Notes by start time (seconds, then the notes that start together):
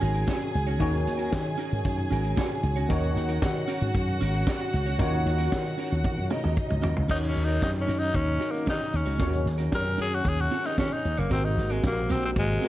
Already playing: C#3 D#3 F#3 D#4 F#4 G#4 C#5 G#5
0.01 G#1 C#4 F#4 A#4, closed hi-hat
0.14 C#4 F#4 A#4, closed hi-hat
0.27 C#4 F#4 A#4, kick, snare
0.40 muted clean electric guitar stroke, closed hi-hat
0.54 C#2, muted clean electric guitar stroke, closed hi-hat
0.67 C#4 F#4 C#5, closed hi-hat
0.79 D#2 D#3 C#4 D#4 F#4 A#4 C#5, kick, closed hi-hat
0.93 muted clean electric guitar stroke, closed hi-hat
1.06 D#2, muted clean electric guitar stroke, closed hi-hat
1.18 C#4 F#4 A#4, closed hi-hat
1.32 D#3, kick, snare
1.45 muted clean electric guitar stroke, closed hi-hat
1.58 C#4 F#4 A#4, closed hi-hat
1.71 G#2, muted clean electric guitar stroke, closed hi-hat
1.85 F#2, muted clean electric guitar stroke, kick, closed hi-hat
1.98 muted clean electric guitar stroke, closed hi-hat
2.11 G#1 C#4 F#4 A#4, closed hi-hat
2.23 C#4 F#4 A#4, closed hi-hat
2.36 C#4 F#4 A#4, kick, snare
2.50 muted clean electric guitar stroke, closed hi-hat
2.63 C#2, muted clean electric guitar stroke, closed hi-hat
2.76 C#4 F#4 C#5, closed hi-hat
2.88 D#2 D#3 C#4 D#4 F#4 A#4 C#5 F#5, kick, closed hi-hat
3.02 muted clean electric guitar stroke, closed hi-hat
3.16 D#2, muted clean electric guitar stroke, closed hi-hat
3.28 C#4 F#4 A#4, closed hi-hat
3.42 D#3, kick, snare
3.54 muted clean electric guitar stroke, closed hi-hat
3.68 C#4 F#4 A#4, closed hi-hat
3.81 G#2, muted clean electric guitar stroke, closed hi-hat
3.95 F#2, muted clean electric guitar stroke, kick, closed hi-hat
4.08 muted clean electric guitar stroke, closed hi-hat
4.21 G#1 C#4 F#4 A#4, closed hi-hat
4.34 C#4 F#4 A#4, closed hi-hat
4.47 C#4 F#4 A#4, kick, snare
4.60 muted clean electric guitar stroke, closed hi-hat
4.73 C#2, muted clean electric guitar stroke, closed hi-hat
4.86 C#4 F#4 C#5, closed hi-hat
4.98 D#2 D#3 C#4 D#4 F4 F#4 A#4 C#5, kick, closed hi-hat
5.06 F#4
5.13 muted clean electric guitar stroke, closed hi-hat
5.26 D#2, muted clean electric guitar stroke, closed hi-hat
5.38 C#4 F#4 A#4, closed hi-hat
5.52 D#3, kick, snare
5.65 muted clean electric guitar stroke, closed hi-hat
5.78 C#4 F#4 A#4, open hi-hat
5.91 D#2, muted clean electric guitar stroke, closed hi-hat
6.04 D#3, muted clean electric guitar stroke, kick, high tom
6.18 F#2, muted clean electric guitar stroke
6.30 C#4 D#4 F#4 A#4 D#5, mid tom
6.43 D#2 C#4 F#4 A#4, mid tom
6.57 muted clean electric guitar stroke, kick
6.69 C#2, muted clean electric guitar stroke, mid tom
6.82 D#2 C#4 F#4 A#4, floor tom
6.96 C#2, muted clean electric guitar stroke, floor tom
7.08 D#2 C#3 D#3 F#3 C#4 D#4 F#4 A#4 C#5, kick, crash
7.22 muted clean electric guitar stroke, closed hi-hat
7.29 C#4
7.35 D#2, muted clean electric guitar stroke, closed hi-hat
7.44 D#4 A#4
7.49 C#4 F#4, closed hi-hat
7.62 F#2 D#4, kick, snare
7.75 muted clean electric guitar stroke, closed hi-hat
7.81 C#4
7.87 F#2 C#4 F#4 A#4, closed hi-hat
7.99 D#4, muted clean electric guitar stroke, closed hi-hat
8.13 D#2 C#4, muted clean electric guitar stroke, kick, closed hi-hat
8.26 muted clean electric guitar stroke, closed hi-hat
8.40 C#4 F#4 A#4, closed hi-hat
8.51 A#3 C#4 F#4 A#4, closed hi-hat
8.66 D#3 C#4 D#4 F#4 A#4, kick, snare
8.78 muted clean electric guitar stroke, closed hi-hat
8.92 D#2 C#4, muted clean electric guitar stroke, closed hi-hat
9.06 C#2 C#4 F#4 C#5, closed hi-hat
9.19 D#2 D#3 C#4 D#4 F#4 A#4 C#5, kick, closed hi-hat
9.33 muted clean electric guitar stroke, closed hi-hat
9.45 D#2, muted clean electric guitar stroke, closed hi-hat
9.58 C#4 F#4 A#4, closed hi-hat
9.72 F#2 A#4, kick, snare
9.85 muted clean electric guitar stroke, closed hi-hat
9.98 F#2 C#4 F#4 G#4 A#4, closed hi-hat
10.10 muted clean electric guitar stroke, closed hi-hat
10.15 F#4
10.24 D#2, muted clean electric guitar stroke, kick, closed hi-hat
10.28 G#4
10.38 F#4, muted clean electric guitar stroke, closed hi-hat
10.51 C#4 F#4 A#4, closed hi-hat
10.64 C#4 D#4 F#4 A#4, snare, closed hi-hat
10.78 D#3 C#4 F#4 A#4, kick, snare
10.91 D#4, muted clean electric guitar stroke, closed hi-hat
11.04 D#2, muted clean electric guitar stroke, closed hi-hat
11.17 F#1 A#3 C#4 F#4 C#5, closed hi-hat
11.30 G#1 C3 G#3 A#3 C4 F#4 A#4 C5, kick, closed hi-hat
11.44 D#4, muted clean electric guitar stroke, closed hi-hat
11.57 G#1, muted clean electric guitar stroke, closed hi-hat
11.70 G#3 C4 F#4 A#4, closed hi-hat
11.83 A#1 A#3, kick, snare
11.95 muted clean electric guitar stroke, closed hi-hat
12.10 A#1 C4 F#4 A#4, closed hi-hat
12.22 C4, muted clean electric guitar stroke, closed hi-hat
12.36 G#1 G#3, muted clean electric guitar stroke, kick, closed hi-hat
12.49 muted clean electric guitar stroke, closed hi-hat
12.62 G#3 C4 F#4 A#4 C5, closed hi-hat